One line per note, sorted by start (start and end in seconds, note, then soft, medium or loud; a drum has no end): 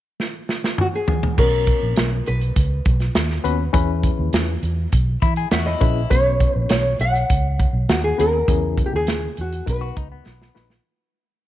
0.20 snare medium
0.49 snare medium
0.64 snare medium
0.78 0.86 F#4 medium
0.78 mid tom medium
0.95 1.38 G#4 medium
1.08 floor tom medium
1.23 floor tom medium
1.37 1.71 B1 medium
1.37 2.22 B2 medium
1.37 2.16 B3 medium
1.37 2.16 C#4 medium
1.37 2.16 F#4 medium
1.37 2.23 A#4 medium
1.37 2.16 C#5 medium
1.37 kick medium
1.37 crash medium
1.67 kick medium
1.67 closed hi-hat medium
1.83 1.94 A#1 medium
1.96 2.20 B1 medium
1.96 snare loud
1.96 closed hi-hat medium
2.26 2.50 B1 medium
2.26 3.41 B4 medium
2.26 closed hi-hat medium
2.41 closed hi-hat medium
2.56 2.79 C#2 medium
2.56 kick medium
2.56 closed hi-hat medium
2.85 3.08 B1 medium
2.85 kick medium
2.85 closed hi-hat medium
3.00 snare soft
3.00 closed hi-hat soft
3.15 3.37 D#2 medium
3.15 snare loud
3.15 closed hi-hat medium
3.30 snare soft
3.44 3.67 D#2 medium
3.44 3.64 B3 medium
3.44 3.64 C#4 medium
3.44 3.64 F#4 medium
3.44 3.64 B4 medium
3.44 closed hi-hat medium
3.73 4.08 E2 medium
3.73 4.59 E3 medium
3.73 4.52 C#4 medium
3.73 4.52 E4 medium
3.73 4.52 G#4 medium
3.73 4.52 B4 medium
3.73 kick loud
3.73 closed hi-hat medium
4.03 kick medium
4.03 closed hi-hat medium
4.19 4.30 D#2 medium
4.33 4.56 E2 medium
4.33 snare loud
4.33 closed hi-hat medium
4.63 4.85 E2 medium
4.63 closed hi-hat medium
4.92 5.15 B1 medium
4.92 kick medium
4.92 closed hi-hat medium
5.22 5.45 E3 medium
5.22 5.36 E4 medium
5.22 kick loud
5.22 closed hi-hat medium
5.36 5.51 G#4 medium
5.36 closed hi-hat soft
5.51 5.74 E2 medium
5.51 5.67 F#4 medium
5.51 5.66 E5 medium
5.51 snare loud
5.51 closed hi-hat medium
5.66 6.09 E4 medium
5.66 6.08 D#5 medium
5.66 snare soft
5.80 6.04 A#1 medium
5.80 6.01 C#4 medium
5.80 6.01 E4 medium
5.80 6.01 G#4 medium
5.80 6.01 B4 medium
5.80 kick medium
5.80 closed hi-hat medium
6.10 6.45 B1 loud
6.10 6.96 B2 medium
6.10 6.89 B3 medium
6.10 6.89 C#4 medium
6.10 6.89 F#4 medium
6.10 6.89 B4 medium
6.10 6.68 C#5 medium
6.10 kick loud
6.10 closed hi-hat medium
6.40 kick medium
6.40 closed hi-hat medium
6.56 6.67 A#1 medium
6.69 6.93 B1 medium
6.69 7.00 C#5 medium
6.69 snare loud
6.69 closed hi-hat loud
6.99 7.22 B1 medium
6.99 7.56 F#5 medium
6.99 closed hi-hat medium
7.16 closed hi-hat soft
7.30 7.64 C#2 medium
7.30 kick medium
7.30 closed hi-hat medium
7.60 kick medium
7.60 closed hi-hat medium
7.73 7.85 B1 medium
7.89 8.11 D#2 loud
7.89 8.04 F#4 medium
7.89 snare loud
7.89 closed hi-hat medium
8.04 8.18 G#4 medium
8.18 8.41 D#2 medium
8.18 8.38 B3 medium
8.18 8.38 C#4 medium
8.18 8.38 F#4 medium
8.18 8.85 A#4 medium
8.18 8.38 B4 medium
8.18 closed hi-hat medium
8.48 8.82 E2 medium
8.48 9.34 C#3 medium
8.48 9.27 B3 medium
8.48 9.27 C#4 medium
8.48 9.27 E4 medium
8.48 9.27 G#4 medium
8.48 kick loud
8.48 closed hi-hat medium
8.77 kick medium
8.77 closed hi-hat medium
8.86 8.93 G4 medium
8.93 9.27 D#2 medium
8.93 9.36 G#4 medium
9.07 snare loud
9.07 closed hi-hat medium
9.37 9.60 E2 medium
9.37 9.67 F#4 medium
9.37 closed hi-hat medium
9.52 closed hi-hat medium
9.66 9.90 B1 medium
9.66 10.52 B2 medium
9.66 10.38 B3 medium
9.66 10.38 D#4 medium
9.66 10.38 F#4 medium
9.66 9.73 A#4 medium
9.66 10.53 B4 medium
9.66 kick medium
9.66 closed hi-hat medium
9.73 10.41 B4 medium
9.81 9.95 F#4 medium
9.96 10.19 C#2 medium
9.96 10.11 D#4 medium
9.96 kick medium
9.96 closed hi-hat medium
10.12 10.82 B3 medium
10.26 10.48 B1 medium
10.26 snare medium
10.42 snare medium
10.55 10.78 A#1 medium
10.55 10.75 B3 medium
10.55 10.75 D#4 medium
10.55 10.75 F#4 medium
10.55 10.75 B4 medium
10.55 snare medium
10.70 snare medium